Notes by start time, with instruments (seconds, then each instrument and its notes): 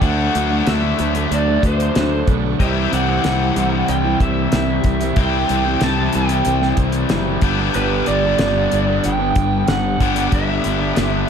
0.02 fingered electric bass D2, overdriven electric guitar D3 F#3 A3 F#4, lead electric guitar F#5, kick, closed hi-hat
0.06 overdriven electric guitar D4
0.35 fingered electric bass D2, overdriven electric guitar D3 F#3 A3 D4, closed hi-hat
0.51 overdriven electric guitar F#3 A3 D4
0.66 fingered electric bass D2, overdriven electric guitar D3 F#3 A3 D4, lead electric guitar E5, snare, closed hi-hat
0.83 overdriven electric guitar F#3 A3 D4
0.98 fingered electric bass D2, overdriven electric guitar D3 F#3 A3 D4, closed hi-hat
1.15 overdriven electric guitar F#3 A3 D4, closed hi-hat
1.31 fingered electric bass D2, lead electric guitar D5, closed hi-hat
1.48 overdriven electric guitar F#3 A3 D4
1.63 fingered electric bass D2, overdriven electric guitar D3 F#3 A3 D4, lead electric guitar C5, kick, closed hi-hat
1.80 closed hi-hat
1.95 fingered electric bass D2, overdriven electric guitar D3 F#3 A3 D4, snare, closed hi-hat
2.27 fingered electric bass B1, overdriven electric guitar D3 F#3 A3 D4, kick, closed hi-hat
2.45 overdriven electric guitar F#3 A3 D4
2.60 fingered electric bass C2, overdriven electric guitar C3 E3 G3 C4 E4 G4, lead electric guitar E5, kick, closed hi-hat
2.91 fingered electric bass C2, overdriven electric guitar C3 G3 C4 E4, lead electric guitar F#5, closed hi-hat
3.08 overdriven electric guitar G3 C4 E4
3.24 fingered electric bass C2, overdriven electric guitar C3 G3 C4 E4, snare, closed hi-hat
3.40 overdriven electric guitar G3 C4 E4
3.55 fingered electric bass C2, overdriven electric guitar C3 G3 C4 E4, closed hi-hat
3.71 overdriven electric guitar G3 C4 E4
3.88 fingered electric bass C2, lead electric guitar G5, closed hi-hat
4.04 overdriven electric guitar G3 C4 E4
4.20 fingered electric bass C2, overdriven electric guitar C3 G3 C4 E4, lead electric guitar E5, kick, closed hi-hat
4.52 fingered electric bass C2, overdriven electric guitar C3 G3 C4 E4, snare, closed hi-hat
4.84 fingered electric bass C2, overdriven electric guitar C3 G3 C4 E4, kick, closed hi-hat
5.01 overdriven electric guitar G3 C4 E4, closed hi-hat
5.16 fingered electric bass C2, overdriven electric guitar C3 E3 G3 C4 G4, kick, closed hi-hat
5.21 overdriven electric guitar E4, lead electric guitar G5
5.49 fingered electric bass C2, overdriven electric guitar C3 G3 C4 E4, closed hi-hat
5.66 overdriven electric guitar G3 C4 E4
5.81 fingered electric bass C2, overdriven electric guitar C3 G3 C4 E4, lead electric guitar A5, snare, closed hi-hat
5.98 overdriven electric guitar G3 C4 E4
6.13 fingered electric bass C2, overdriven electric guitar C3 G3 C4, lead electric guitar G5, closed hi-hat
6.17 overdriven electric guitar E4
6.29 overdriven electric guitar G3 C4 E4, closed hi-hat
6.45 fingered electric bass C2, closed hi-hat
6.61 overdriven electric guitar G3 C4 E4, snare
6.76 fingered electric bass C2, overdriven electric guitar C3 G3 C4 E4, kick, closed hi-hat
6.92 closed hi-hat
7.09 fingered electric bass F#1, overdriven electric guitar C3 G3 C4 E4, snare, closed hi-hat
7.41 fingered electric bass G1, overdriven electric guitar G2 D3 G3 B3 D4 G4, kick, closed hi-hat
7.58 overdriven electric guitar G3 B3 D4
7.74 fingered electric bass G1, overdriven electric guitar G2 D3 G3 B3 D4, lead electric guitar B4, closed hi-hat
8.06 fingered electric bass G1, overdriven electric guitar D3 G3 B3 D4, lead electric guitar D5, closed hi-hat
8.24 overdriven electric guitar G3 B3 D4
8.38 fingered electric bass G1, overdriven electric guitar G2 D3 G3 B3 D4, snare, closed hi-hat
8.55 overdriven electric guitar G3 B3 D4
8.71 fingered electric bass G1, overdriven electric guitar D3 G3 B3 D4, closed hi-hat
8.87 overdriven electric guitar G3 B3 D4
9.04 fingered electric bass G1, lead electric guitar G5, closed hi-hat
9.19 overdriven electric guitar G3 B3 D4
9.36 fingered electric bass G1, overdriven electric guitar D3 G3 B3 D4, kick, closed hi-hat
9.67 fingered electric bass G1, overdriven electric guitar G2 D3 G3 B3 D4, lead electric guitar F#5, snare, closed hi-hat
9.99 fingered electric bass G1, overdriven electric guitar G2 D3 G3 B3 D4 G4, kick, closed hi-hat
10.16 overdriven electric guitar G3 B3 D4, closed hi-hat
10.32 fingered electric bass G1, overdriven electric guitar G2 D3 G3 B3 D4, lead electric guitar E5, kick, closed hi-hat
10.63 fingered electric bass G1, overdriven electric guitar D3 G3 B3 D4, closed hi-hat
10.79 overdriven electric guitar G3 B3 D4
10.96 fingered electric bass G1, overdriven electric guitar G2 D3 G3 B3 D4, snare, closed hi-hat
11.12 overdriven electric guitar G3 B3 D4